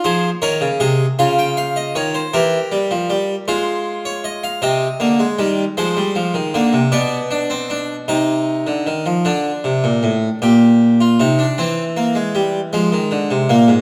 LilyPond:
<<
  \new Staff \with { instrumentName = "Harpsichord" } { \time 6/8 \key f \minor \tempo 4. = 52 << { c''8 des''8 ees''8 f''16 g''16 f''16 ees''16 des''16 c''16 | bes'4. c''8. des''16 ees''16 f''16 | ees''4. c''4. | d''4. ees''4. |
r2. | r2. | } \\ { aes'8 bes'8 aes'8 f'4. | g'4. f'4. | c'8 bes16 aes16 g8 aes4 bes8 | b8 d'16 c'16 d'8 ees'4. |
d'4. g'8. f'16 ees'16 d'16 | c'8 bes16 aes16 g8 aes4 bes8 | } >> }
  \new Staff \with { instrumentName = "Harpsichord" } { \clef bass \time 6/8 \key f \minor f8 ees16 des16 c8 des4 ees8 | e8 g16 f16 g8 aes4. | c8 d8 ees8 f16 g16 f16 ees16 d16 c16 | b,4. c8. d16 ees16 f16 |
d8 c16 bes,16 a,8 bes,4 c8 | e4. f16 ees16 d16 c16 bes,16 aes,16 | }
>>